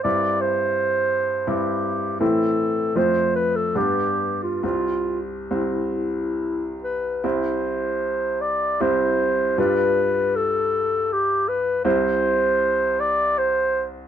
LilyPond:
<<
  \new Staff \with { instrumentName = "Clarinet" } { \time 3/4 \key c \lydian \tempo 4 = 78 d''8 c''4. g'4 | \key c \major a'4 c''8 b'16 a'16 g'8. f'16 | f'8. r16 e'4. b'8 | c''4. d''8 c''4 |
b'4 a'4 g'8 b'8 | c''4. d''8 c''8. r16 | }
  \new Staff \with { instrumentName = "Grand piano" } { \clef bass \time 3/4 \key c \lydian <g, g c' e'>2 <g, g c' e'>4 | \key c \major <a, e c' e'>4 <f, a c' f'>4 <g, g b d'>4 | <c, g c'>4 <c, g c'>2 | <c, g c' e'>2 <c, g c' e'>4 |
<g, g d' f'>2. | <c, g c' e'>2. | }
>>